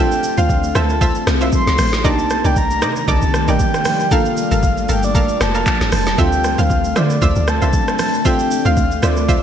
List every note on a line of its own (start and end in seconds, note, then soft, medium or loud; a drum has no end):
0.00 2.01 D3 medium
0.00 2.01 A3 medium
0.00 2.00 C4 medium
0.00 2.01 C4 medium
0.00 2.01 D4 medium
0.00 2.01 F4 medium
0.00 2.01 A4 medium
0.00 0.40 G5 loud
0.12 shaker medium
0.23 high conga medium
0.23 shaker loud
0.38 0.73 D2 medium
0.38 0.72 F4 medium
0.38 0.73 C5 medium
0.38 0.73 F5 medium
0.38 0.78 F5 loud
0.38 high conga medium
0.38 shaker medium
0.49 kick loud
0.49 shaker medium
0.64 high conga medium
0.64 shaker medium
0.75 1.13 D2 loud
0.75 0.99 F4 medium
0.75 0.99 C5 medium
0.75 0.99 E5 medium
0.75 1.27 A5 loud
0.75 cross-stick loud
0.75 high conga medium
0.75 shaker loud
0.89 high conga medium
0.89 shaker medium
1.01 1.13 F4 medium
1.01 1.13 C5 medium
1.01 1.13 E5 loud
1.01 kick loud
1.01 shaker medium
1.15 shaker soft
1.27 1.51 C2 medium
1.27 cross-stick loud
1.27 snare medium
1.27 high conga medium
1.27 shaker medium
1.41 1.51 F4 medium
1.41 1.51 C5 medium
1.41 1.51 E5 medium
1.41 shaker medium
1.52 2.02 C6 loud
1.52 kick loud
1.52 low conga medium
1.52 shaker medium
1.67 1.78 C2 medium
1.67 snare medium
1.67 shaker medium
1.78 2.06 A1 medium
1.78 cross-stick loud
1.78 open hi-hat medium
1.78 high conga medium
1.78 low conga medium
1.78 shaker loud
1.93 snare medium
1.93 shaker medium
2.04 2.43 C2 loud
2.04 4.09 C3 medium
2.04 4.09 D#3 medium
2.04 6.14 G3 medium
2.04 4.07 A#3 medium
2.04 4.09 A#3 medium
2.04 4.08 D4 medium
2.04 2.16 D#4 loud
2.04 4.08 D#4 medium
2.04 4.08 G4 medium
2.04 2.16 A#4 medium
2.04 6.14 D5 medium
2.04 2.17 D5 loud
2.04 2.47 A5 loud
2.04 kick loud
2.04 shaker medium
2.19 shaker medium
2.30 cross-stick medium
2.30 high conga soft
2.30 shaker loud
2.44 2.84 C2 loud
2.44 2.79 D#4 medium
2.44 2.79 A#4 medium
2.44 2.80 D5 medium
2.44 2.57 G5 loud
2.44 high conga medium
2.44 shaker medium
2.56 3.05 A#5 loud
2.56 kick loud
2.56 shaker medium
2.71 high conga medium
2.71 shaker medium
2.82 3.07 C3 loud
2.82 3.06 D#4 medium
2.82 3.06 A#4 medium
2.82 3.06 D5 medium
2.82 cross-stick loud
2.82 high conga medium
2.82 shaker loud
2.96 high conga medium
2.96 shaker medium
3.08 3.21 C2 loud
3.08 3.20 D#4 loud
3.08 3.20 A#4 medium
3.08 3.20 D5 loud
3.08 3.51 A5 loud
3.08 kick loud
3.08 shaker medium
3.22 3.47 C2 loud
3.22 shaker soft
3.34 cross-stick loud
3.34 high conga medium
3.34 shaker medium
3.48 3.59 A#1 medium
3.48 3.58 D#4 medium
3.48 3.58 A#4 medium
3.48 3.58 D5 medium
3.48 3.60 G5 medium
3.48 shaker medium
3.59 4.14 G5 loud
3.59 kick medium
3.59 low conga medium
3.59 shaker medium
3.74 cross-stick medium
3.74 shaker medium
3.85 cross-stick loud
3.85 open hi-hat medium
3.85 high conga medium
3.85 low conga medium
3.85 shaker loud
4.00 shaker medium
4.11 9.43 F3 medium
4.11 6.14 A#3 medium
4.11 6.16 A#3 medium
4.11 6.15 D4 medium
4.11 6.15 F4 medium
4.11 4.23 A4 loud
4.11 6.15 A4 medium
4.11 4.23 A#4 medium
4.11 4.24 F5 loud
4.11 4.90 F5 loud
4.11 6.16 A5 medium
4.11 kick loud
4.11 low conga medium
4.11 shaker loud
4.25 shaker medium
4.37 high conga medium
4.37 shaker loud
4.51 4.87 G1 loud
4.51 4.86 A4 medium
4.51 4.86 A#4 medium
4.51 4.86 F5 medium
4.51 high conga medium
4.51 shaker medium
4.63 kick loud
4.63 shaker medium
4.77 high conga medium
4.77 shaker medium
4.89 5.27 G1 loud
4.89 5.13 A4 medium
4.89 5.13 A#4 medium
4.89 5.13 F5 medium
4.89 5.03 G5 loud
4.89 high conga medium
4.89 shaker medium
5.03 5.43 D5 loud
5.03 high conga medium
5.03 shaker medium
5.15 5.27 A4 loud
5.15 5.27 A#4 medium
5.15 5.27 F5 loud
5.15 kick loud
5.15 shaker medium
5.29 shaker soft
5.41 5.65 F1 medium
5.41 5.93 A5 loud
5.41 cross-stick loud
5.41 snare medium
5.41 high conga medium
5.41 shaker medium
5.55 5.65 A4 medium
5.55 5.65 A#4 medium
5.55 5.65 F5 medium
5.55 shaker medium
5.66 kick loud
5.66 clap loud
5.66 low conga medium
5.66 shaker medium
5.81 5.92 G1 medium
5.81 snare medium
5.81 shaker medium
5.92 6.17 F1 medium
5.92 6.17 A5 loud
5.92 cross-stick loud
5.92 open hi-hat medium
5.92 high conga medium
5.92 low conga medium
5.92 shaker loud
6.07 snare medium
6.07 shaker medium
6.18 6.56 D2 loud
6.18 9.43 D3 medium
6.18 9.43 A3 medium
6.18 8.21 C4 medium
6.18 9.43 C4 medium
6.18 9.43 D4 medium
6.18 8.21 D4 medium
6.18 6.30 F4 loud
6.18 8.22 F4 medium
6.18 8.22 A4 medium
6.18 6.30 C5 medium
6.18 6.30 E5 loud
6.18 6.61 G5 loud
6.18 kick loud
6.18 shaker loud
6.32 shaker medium
6.44 cross-stick medium
6.44 high conga medium
6.44 shaker medium
6.58 6.94 D2 loud
6.58 6.93 F4 medium
6.58 6.93 C5 medium
6.58 6.93 F5 medium
6.58 6.99 F5 loud
6.58 high conga medium
6.58 shaker medium
6.70 kick medium
6.70 shaker medium
6.84 high conga medium
6.84 shaker medium
6.96 7.20 D3 loud
6.96 7.20 F4 medium
6.96 7.20 C5 medium
6.96 7.50 D5 loud
6.96 7.20 E5 medium
6.96 cross-stick loud
6.96 high conga medium
6.96 shaker medium
7.10 high conga medium
7.10 shaker medium
7.22 7.35 D2 loud
7.22 7.34 F4 loud
7.22 7.34 C5 medium
7.22 7.34 E5 loud
7.22 kick loud
7.22 shaker medium
7.36 7.61 D2 loud
7.36 shaker soft
7.48 8.00 A5 loud
7.48 cross-stick loud
7.48 high conga medium
7.48 shaker medium
7.62 7.73 C2 loud
7.62 7.71 F4 medium
7.62 7.72 C5 medium
7.62 7.72 E5 medium
7.62 shaker medium
7.73 kick loud
7.73 low conga medium
7.73 shaker medium
7.88 cross-stick medium
7.88 shaker medium
7.99 8.24 A5 medium
7.99 cross-stick loud
7.99 open hi-hat medium
7.99 high conga medium
7.99 low conga medium
7.99 shaker loud
8.14 shaker medium
8.25 9.43 C4 medium
8.25 9.43 D4 medium
8.25 8.37 F4 loud
8.25 9.43 F4 medium
8.25 9.43 A4 medium
8.25 8.37 C5 medium
8.25 8.37 E5 loud
8.25 8.68 G5 loud
8.25 kick loud
8.25 shaker loud
8.39 shaker medium
8.51 high conga medium
8.51 shaker loud
8.65 9.01 D2 loud
8.65 9.00 F4 medium
8.65 9.00 C5 medium
8.65 9.00 F5 medium
8.65 9.03 F5 medium
8.65 high conga medium
8.65 shaker medium
8.77 kick loud
8.77 shaker medium
8.91 high conga medium
8.91 shaker medium
9.02 9.41 D2 loud
9.02 9.27 F4 medium
9.02 9.27 C5 medium
9.02 9.43 D5 medium
9.02 9.27 E5 medium
9.02 cross-stick loud
9.02 high conga medium
9.02 shaker loud
9.17 high conga medium
9.17 shaker medium
9.29 9.40 F4 loud
9.29 9.41 C5 medium
9.29 9.41 E5 loud
9.29 kick loud
9.29 shaker medium